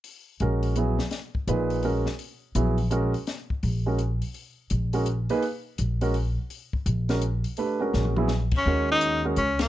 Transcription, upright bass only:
X:1
M:3/4
L:1/8
Q:"Swing" 1/4=167
K:Ebphr
V:1 name="Upright bass" clef=bass
z2 B,,,3 z | z2 B,,,3 z | z2 B,,,3 z | z2 B,,,3 z |
z2 B,,,3 z | z2 B,,,3 z | z2 B,,,3 z | z2 B,,,3 z |
E,,4 D,,2 |]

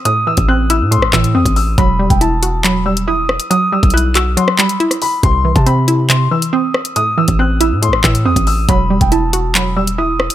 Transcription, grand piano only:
X:1
M:4/4
L:1/16
Q:1/4=139
K:Em
V:1 name="Grand piano"
^d'2 e'2 f'2 e'2 c'2 e'2 d'2 e'2 | b3 g a4 b2 e'2 ^d'2 z2 | ^d'2 e'2 f'2 e'2 c'2 b4 b2 | c'3 a b4 c'2 e'2 ^d'2 z2 |
^d'2 e'2 f'2 e'2 c'2 e'2 d'2 e'2 | b3 g a4 b2 e'2 ^d'2 z2 |]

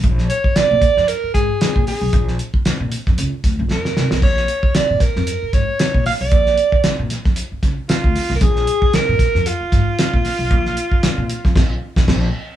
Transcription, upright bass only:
X:1
M:4/4
L:1/16
Q:"Swing 16ths" 1/4=115
K:Bbmix
V:1 name="Upright bass" clef=bass
B,,,2 z3 B,, z F,, z2 A,, z2 B,, z _C,, | B,,,2 z3 B,, z F,, _D,, z =D,, B,,, F,, z C,, _C,, | B,,,2 z3 B,, z F,, z2 A,, z2 B,, z _C,, | B,,,2 z3 B,, z F,, z2 _D,, z2 =D,, z _C,, |
B,,,2 z3 B,, z F,, z2 A,, z2 B,, z _C,, | B,,,2 z3 B,, z F,, B,,,2 z B,,, B,,,2 z2 |]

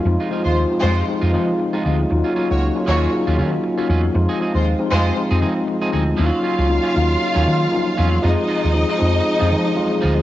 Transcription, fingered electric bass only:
X:1
M:4/4
L:1/16
Q:"Swing 16ths" 1/4=117
K:Ebdor
V:1 name="Fingered electric bass" clef=bass
F,, z2 E,,2 z F,,2 z F,, F,2 z2 =D,,2 | E,, z2 D,,2 z E,,2 z E,, E,2 z2 _F,,2 | F,, z2 E,,2 z F,,2 z F,, F,2 z2 =D,,2 | E,, z2 D,,2 z E,,2 z E,, E,2 z2 _F,,2 |
F,, z2 E,,2 z F,,2 z F,, F,2 z2 =D,,2 |]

